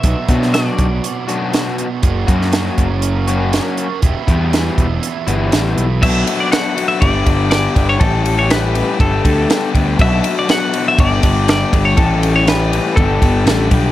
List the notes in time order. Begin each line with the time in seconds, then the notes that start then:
Already playing: E5
0.03 B1 B2 F#3 B3 D4 F#4, kick, closed hi-hat
0.28 B2 F#3 B3 D4 F#4, kick, closed hi-hat
0.42 snare
0.53 F#3 B3 D4 F#4 D5, snare, closed hi-hat
0.78 B1, kick, closed hi-hat
1.04 closed hi-hat
1.28 F#3 B3 D4 F#4, closed hi-hat
1.53 F#3 B3 D4 F#4, snare, closed hi-hat
1.78 closed hi-hat
2.02 F#1 F#3 A#3 C#4 F#4, kick, closed hi-hat
2.27 F#2 F#3 A#3 C#4 F#4, kick, closed hi-hat
2.41 snare
2.53 F#3 A#3 C#4 F#4, snare, closed hi-hat
2.78 F#1, kick, closed hi-hat
3.02 closed hi-hat
3.28 F#3 A#3 C#4 F#4, closed hi-hat
3.53 F#3 A#3 C#4 F#4, snare, closed hi-hat
3.77 closed hi-hat
4.02 E1 E3 B3 E4 G4, kick, closed hi-hat
4.27 E2 E3 G3 B3 E4, kick, closed hi-hat
4.52 E3 G3 B3 E4, snare, closed hi-hat
4.78 E1, kick, closed hi-hat
5.03 closed hi-hat
5.27 G1 E3 G3 B3 E4, closed hi-hat
5.51 A1 E3 G3 B3 E4, snare, closed hi-hat
5.77 B1, closed hi-hat
6.02 B1 B2 F#3 B3 D4 F#4 A4 E5 F#5 B5 D6, kick, crash
6.27 B3 D4 F#4, ride
6.40 D5
6.51 F#3 B3 D4 F#4 F#5, snare, ride
6.75 B2 F#3 B3 D4 F#4, ride
6.88 E5
7.00 G1 G2 D3 G3 B3 D4 G4 D5 G5 D6, kick, ride
7.25 G1 G3 B3 D4 G4, kick, ride
7.50 G2 D3 G3 B3 D4 G4 D5, snare, ride
7.74 G1 G3 B3 D4 G4, kick, ride
7.89 C#5
7.99 A1 A2 E3 G3 C#4 G4 A4 C#6 E6, kick, ride
8.24 G3 C#4 G4, ride
8.39 C#5
8.49 E3 G3 C#4 G4 B4, snare, ride
8.74 A2 E3 G3 C#4 G4, ride
8.98 G1 G2 D3 G3 B3 D4 G4 A4 G5 B5 D6, kick, ride
9.24 D2 G3 B3 D4 G4, kick, ride
9.48 G2 D3 G3 B3 D4 G4, snare, ride
9.73 D2 G3 B3 D4 G4, kick, ride
9.98 B1 B2 F#3 B3 D4 F#4 E5 F#5, kick, ride
10.24 B3 D4 F#4, ride
10.39 D5
10.48 F#3 B3 D4 F#4 F#5, snare, ride
10.73 B2 F#3 B3 D4 F#4, ride
10.88 E5
10.97 G1 G2 D3 G3 B3 D4 G4 D5 G5, kick, ride
11.22 G1 G3 B3 D4 G4, kick, ride
11.48 G2 D3 G3 B3 D4 G4 D5, snare, ride
11.72 G1 G3 B3 D4 G4, kick, ride
11.85 C#5
11.96 A1 A2 E3 G3 C#4 G4 A4 E5 C#6, kick, ride
12.22 G3 C#4 G4, ride
12.36 C#5
12.46 E3 G3 C#4 G4 B4, snare, ride
12.72 A2 E3 G3 C#4 G4, ride
12.96 G1 G2 D3 G3 B3 D4 G4 A4 D5 B5, kick, ride
13.21 G1 G3 B3 D4 G4, kick, ride
13.45 A1 G2 D3 G3 B3 D4 G4, snare, ride
13.71 B1 G3 B3 D4 G4, kick, ride